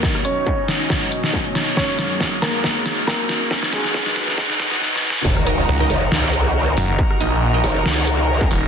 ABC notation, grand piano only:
X:1
M:4/4
L:1/8
Q:"Swing 16ths" 1/4=138
K:Ebm
V:1 name="Grand piano"
[B,B] [^C^c]6- [Cc] | [Dd]3 [B,B]3 [B,B]2- | [B,B] [A,A]4- [A,A] z2 | z8 |
z8 |]